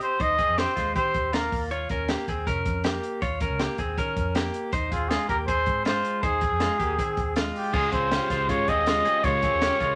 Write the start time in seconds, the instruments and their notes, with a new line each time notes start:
Already playing: clean electric guitar C4 G4
0.01 trumpet C5, closed hi-hat
0.19 fingered electric bass D#2, clean electric guitar D#4 C5, trumpet D#5, kick, closed hi-hat
0.39 clean electric guitar C4 G#4, kick, closed hi-hat
0.48 fingered electric bass F2
0.58 clean electric guitar C4 G4, trumpet C5, snare, closed hi-hat
0.76 fingered electric bass D#2, clean electric guitar G#3 F4, kick, snare, closed hi-hat
0.95 fingered electric bass D#3, clean electric guitar C4 G4, trumpet C5, kick, closed hi-hat
1.14 fingered electric bass D#2, kick, closed hi-hat
1.33 clean electric guitar A#3 F4, trumpet A#4, snare, closed hi-hat
1.52 fingered electric bass D#2, kick, open hi-hat
1.71 clean electric guitar F4 C#5, closed hi-hat
1.89 fingered electric bass D#2, clean electric guitar C#4 A#4, kick, closed hi-hat
2.08 clean electric guitar A#3 G4, snare, closed hi-hat
2.28 fingered electric bass D#2, clean electric guitar C4 G#4, kick, closed hi-hat
2.47 fingered electric bass F1, clean electric guitar C#4 A#4, kick, closed hi-hat
2.65 fingered electric bass F2, kick, closed hi-hat
2.84 clean electric guitar A#3 G4, snare, closed hi-hat
3.03 closed hi-hat
3.22 fingered electric bass D#2, clean electric guitar F4 C#5, kick, closed hi-hat
3.40 clean electric guitar C#4 A#4, kick, closed hi-hat
3.50 fingered electric bass C#2
3.59 clean electric guitar A#3 G4, snare, closed hi-hat
3.78 fingered electric bass D#2, clean electric guitar C4 G#4, kick, closed hi-hat
3.97 fingered electric bass D#3, clean electric guitar C#4 A#4, kick, closed hi-hat
4.16 fingered electric bass F2, kick, closed hi-hat
4.35 clean electric guitar A#3 G4, snare, closed hi-hat
4.54 closed hi-hat
4.72 fingered electric bass D#2, clean electric guitar D#4 C5, kick, closed hi-hat
4.91 fingered electric bass D#2, clean electric guitar C4 G#4, trumpet F4, kick, closed hi-hat
5.09 clean electric guitar G#3 F4, trumpet G#4, snare, closed hi-hat
5.29 fingered electric bass D#2, clean electric guitar A#3 G4, trumpet A#4, kick, closed hi-hat
5.47 fingered electric bass D#2, clean electric guitar C4 G#4, trumpet C5, kick, closed hi-hat
5.66 fingered electric bass G#2, kick, closed hi-hat
5.85 clean electric guitar G#3 F4, trumpet C5, snare, closed hi-hat
6.05 closed hi-hat
6.22 fingered electric bass D#2, clean electric guitar D#4 C5, trumpet G#4, kick, closed hi-hat
6.41 clean electric guitar C4 G#4, kick, closed hi-hat
6.52 fingered electric bass F2
6.60 clean electric guitar G#3 F4, snare, closed hi-hat
6.79 fingered electric bass D#2, clean electric guitar A#3 G4, kick, closed hi-hat
6.98 fingered electric bass D#3, clean electric guitar C4 G#4, kick, closed hi-hat
7.17 fingered electric bass D#2, kick, closed hi-hat
7.36 clean electric guitar G#3 F4, snare, closed hi-hat
7.56 trumpet G4, open hi-hat
7.73 fingered electric bass C#2, overdriven electric guitar C#3 G#3 C#4 F4, clean electric guitar G#3 F4, synth keys C#4 F4 G#4, trumpet G#4, kick, crash
7.92 fingered electric bass C#2, overdriven electric guitar G#3 C#4 F4, clean electric guitar C4 G#4, trumpet C5, kick, closed hi-hat
8.10 overdriven electric guitar C#3 G#3 C#4 F4, synth keys C#4 F4 G4, clean electric guitar C#4 G4, snare, closed hi-hat
8.30 fingered electric bass C#2, clean electric guitar G#3 F4, kick, snare, closed hi-hat
8.49 fingered electric bass G#1, overdriven electric guitar C#3 G#3 C#4 F4, clean electric guitar G#3 F4, synth keys C#4 F4 G#4, trumpet C#5, kick, closed hi-hat
8.68 fingered electric bass D#2, overdriven electric guitar G#3 C#4 F4, clean electric guitar C4 G#4, trumpet D#5, kick, closed hi-hat
8.86 overdriven electric guitar C#3 G#3 C#4 F4, clean electric guitar G#3 F4, synth keys C#4 F4 G#4, snare, closed hi-hat
9.05 overdriven electric guitar G#3 C#4 F4, clean electric guitar C4 G#4, closed hi-hat
9.24 fingered electric bass C#2, overdriven electric guitar C#3 G#3 C#4 F4, clean electric guitar G#3 F4, synth keys C#4 F4 A#4, trumpet C#5, kick, closed hi-hat
9.42 overdriven electric guitar G#3 C#4 F4, clean electric guitar C4 G#4, kick, closed hi-hat
9.53 fingered electric bass D#2
9.61 overdriven electric guitar C#3 G#3 C#4 F4, synth keys C#4 F4 G#4, clean electric guitar C#4 G4, snare, closed hi-hat
9.80 fingered electric bass C#2, clean electric guitar G#3 F4, kick, closed hi-hat